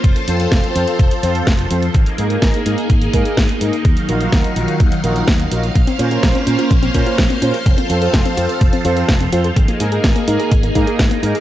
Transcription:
<<
  \new Staff \with { instrumentName = "Analog polysynth" } { \time 4/4 \key f \phrygian \tempo 4 = 126 r8 <c' f' a' c''>16 <c' f' a' c''>8. <c' f' a' c''>8 r8 <c' f' a' c''>8 r8 <c' f' a' c''>16 r16 | r8 <bes ees' aes' bes'>16 <bes ees' aes' bes'>8. <bes ees' aes' bes'>8 r8 <bes ees' aes' bes'>8 r8 <bes ees' aes' bes'>16 r16 | r8 <ees' f' ges' bes'>16 <ees' f' ges' bes'>8. <ees' f' ges' bes'>8 r8 <ees' f' ges' bes'>8 r8 <ees' f' ges' bes'>16 r16 | r8 <des' f' bes' c''>16 <des' f' bes' c''>8. <des' f' bes' c''>8 r8 <des' f' bes' c''>8 r8 <des' f' bes' c''>16 r16 |
r8 <c' f' a' c''>16 <c' f' a' c''>8. <c' f' a' c''>8 r8 <c' f' a' c''>8 r8 <c' f' a' c''>16 r16 | r8 <bes ees' aes' bes'>16 <bes ees' aes' bes'>8. <bes ees' aes' bes'>8 r8 <bes ees' aes' bes'>8 r8 <bes ees' aes' bes'>16 r16 | }
  \new Staff \with { instrumentName = "String machine" } { \time 4/4 \key f \phrygian <f f' a' c''>1 | <bes ees' aes'>1 | <ees ges f''>1 | <bes des' c''>1 |
<f a'>1 | <bes ees' aes'>1 | }
  \new Staff \with { instrumentName = "Synth arpeggio sound" } { \time 4/4 \key f \phrygian r1 | r1 | r1 | bes16 c'16 des'16 f'16 bes16 c'16 des'16 f'16 bes16 c'16 des'16 f'16 bes16 c'16 des'16 f'16 |
a16 c'16 f'16 a'16 a16 c'16 f'16 a'16 a16 c'16 f'16 a'16 a16 c'16 f'16 a'16 | aes16 bes16 ees'16 aes'16 aes16 bes16 ees'16 aes'16 aes16 bes16 ees'16 aes'16 aes16 bes16 ees'16 aes'16 | }
  \new Staff \with { instrumentName = "Fingered electric bass" } { \clef bass \time 4/4 \key f \phrygian f,,8 f,8 f,,8 f,8 f,,8 f,8 f,,8 f,8 | aes,,8 aes,8 aes,,8 aes,8 aes,,8 aes,8 aes,,8 aes,8 | ees,8 bes,,8 ees,8 bes,,8 ees,8 bes,,8 ees,8 bes,,8 | bes,,8 bes,8 bes,,8 bes,8 bes,,8 bes,8 bes,,8 bes,8 |
f,,8 f,8 f,,8 f,8 f,,8 f,8 f,,8 f,8 | aes,,8 aes,8 aes,,8 aes,8 aes,,8 aes,8 aes,,8 aes,8 | }
  \new DrumStaff \with { instrumentName = "Drums" } \drummode { \time 4/4 <hh bd>16 hh16 hh16 hh16 <hh bd sn>16 hh16 hh16 hh16 <hh bd>16 hh16 hh16 hh16 <hh bd sn>16 hh16 hh16 hh16 | <hh bd>16 hh16 hh16 hh16 <hh bd sn>16 hh16 hh16 hh16 <hh bd>16 hh16 <hh bd>16 hh16 <hh bd sn>16 hh16 hh16 hh16 | <hh bd>16 hh16 hh16 hh16 <hh bd sn>16 hh16 hh16 hh16 <hh bd>16 hh16 hh16 hh16 <hh bd sn>16 hh16 hh16 hh16 | <hh bd>16 hh16 hh16 hh16 <hh bd sn>16 hh16 hh16 hh16 <hh bd>16 hh16 <hh bd>16 hh16 <hh bd sn>16 hh16 hh16 hh16 |
<hh bd>16 hh16 hh16 hh16 <hh bd sn>16 hh16 hh16 hh16 <hh bd>16 hh16 hh16 hh16 <hh bd sn>16 hh16 hh16 hh16 | <hh bd>16 hh16 hh16 hh16 <hh bd sn>16 hh16 hh16 hh16 <hh bd>16 hh16 <hh bd>16 hh16 <hh bd sn>16 hh16 hh16 hh16 | }
>>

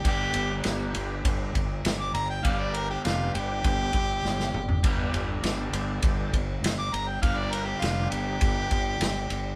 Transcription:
<<
  \new Staff \with { instrumentName = "Harmonica" } { \time 4/4 \key g \mixolydian \tempo 4 = 100 g'4 r2 r16 d'''16 bes''16 g''16 | f''16 d''16 bes'16 g'16 f'8 g'2~ g'8~ | g'8 r2 r8. d'''16 bes''16 g''16 | f''16 d''16 bes'16 g'16 f'8 g'2~ g'8 | }
  \new Staff \with { instrumentName = "Tonewheel organ" } { \time 4/4 \key g \mixolydian <b d' g' b'>8. r16 <b d' g' b'>4. r4. | <b d' g' b'>8. r16 <b d' g' b'>4. r4. | <b d' g' b'>8. r16 <b d' g' a'>4. r4. | <b d' g' b'>8. r16 <b d' g' b'>4. r4. | }
  \new Staff \with { instrumentName = "Overdriven electric guitar" } { \clef bass \time 4/4 \key g \mixolydian <g, d g>1 | <g, d g>1 | <g, d g>1 | <g, d g>1 | }
  \new Staff \with { instrumentName = "Fingered electric bass" } { \clef bass \time 4/4 \key g \mixolydian g,,8 g,,8 g,,8 g,,8 g,,8 g,,8 g,,8 g,,8 | g,,4 f,,8 g,,8 g,,8 g,,8 g,,8 g,,8 | g,,8 g,,8 g,,8 g,,8 g,,8 g,,8 g,,8 g,,8 | g,,4 f,,8 g,,8 g,,8 g,,8 g,,8 g,,8 | }
  \new DrumStaff \with { instrumentName = "Drums" } \drummode { \time 4/4 <bd cymr>8 cymr8 <cymr sn>8 cymr8 <bd cymr>8 <bd cymr>8 <cymr sn>8 cymr8 | <bd cymr>8 cymr8 <cymr sn>8 cymr8 <bd cymr>8 <bd cymr>8 sn16 sn16 toml16 tomfh16 | <bd cymr>8 cymr8 <cymr sn>8 cymr8 <bd cymr>8 <bd cymr>8 <cymr sn>8 cymr8 | <bd cymr>8 cymr8 <cymr sn>8 cymr8 <bd cymr>8 <bd cymr>8 <cymr sn>8 cymr8 | }
>>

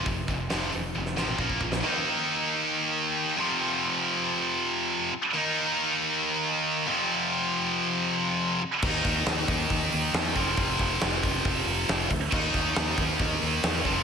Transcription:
<<
  \new Staff \with { instrumentName = "Distorted electric guitar" } { \clef bass \time 4/4 \key ees \lydian \tempo 4 = 137 <f, c>8 <f, c>8 <f, c f>8 <f, c>8 <f, c>8 <f, c f>8 <bes, f bes>8 <bes, f>8 | <ees bes ees'>2.~ <ees bes ees'>8 <f, c f>8~ | <f, c f>2.~ <f, c f>8 r8 | <ees bes ees'>2.~ <ees bes ees'>8 <f, c f>8~ |
<f, c f>2.~ <f, c f>8 r8 | <ees bes ees'>2.~ <ees bes ees'>8 <f, c f>8~ | <f, c f>2.~ <f, c f>8 r8 | <ees bes ees'>2.~ <ees bes ees'>8 <f, c f>8 | }
  \new Staff \with { instrumentName = "Fingered electric bass" } { \clef bass \time 4/4 \key ees \lydian f,,8 f,,8 f,,8 f,,8 f,,8 a,,8 bes,,8 bes,,8 | r1 | r1 | r1 |
r1 | ees,8 ees,8 ees,8 ees,8 ees,8 ees,8 e,8 f,,8 | f,,8 f,,8 f,,8 f,,8 f,,8 f,,8 f,,8 d,8 | ees,8 ees,8 ees,8 ees,8 ees,8 ees,8 e,8 f,,8 | }
  \new DrumStaff \with { instrumentName = "Drums" } \drummode { \time 4/4 <hho bd>8 <hho bd>8 <hho sn>8 hho8 tommh16 sn16 sn16 toml16 bd16 bd16 bd16 sn16 | r4 r4 r4 r4 | r4 r4 r4 r4 | r4 r4 r4 r4 |
r4 r4 r4 r4 | <cymc bd>8 <hho bd sn>8 <hho sn>8 <hho bd>8 <hho bd>8 hho8 sn8 <hho bd>8 | <hho bd>8 <hho bd>8 <hho sn>8 <hho bd>8 <hho bd>8 hho8 <hho sn>8 <hho bd>8 | <cymc bd>8 <hho bd sn>8 <hho sn>8 <hho bd>8 <hho bd>8 hho8 <hho sn>8 <hho bd>8 | }
>>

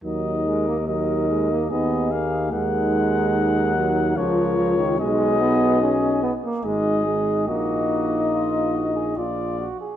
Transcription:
<<
  \new Staff \with { instrumentName = "Cornet" } { \time 3/4 \key ees \minor \tempo 4 = 72 ees''4 ees''4 ees''8 f''8 | ges''2 des''4 | ees''4. r8 ees''4 | ees''2 d''8 r8 | }
  \new Staff \with { instrumentName = "Flugelhorn" } { \time 3/4 \key ees \minor bes'4 bes'4 aes'4 | bes'2 bes'4 | aes'4. r8 aes'4 | ges'4 f'8 ges'16 aes'16 f'8 ges'16 aes'16 | }
  \new Staff \with { instrumentName = "French horn" } { \time 3/4 \key ees \minor ees'4 ees'4 ees'4 | ees'2 f'4 | ees'4. r8 ees'4 | ees'2 f'8 r8 | }
  \new Staff \with { instrumentName = "Trombone" } { \clef bass \time 3/4 \key ees \minor ges8 aes16 bes16 ges8 aes16 bes16 ces'8 bes8 | aes4. ges8 f8 f16 ees16 | aes8 ces'8 des'8 ces'16 bes16 aes8 aes8 | bes2 r4 | }
  \new Staff \with { instrumentName = "Bass trombone" } { \clef bass \time 3/4 \key ees \minor ees,2 ees,4 | ees,2 des,4 | ces,4. r8 aes,,4 | bes,,2 bes,,8 r8 | }
>>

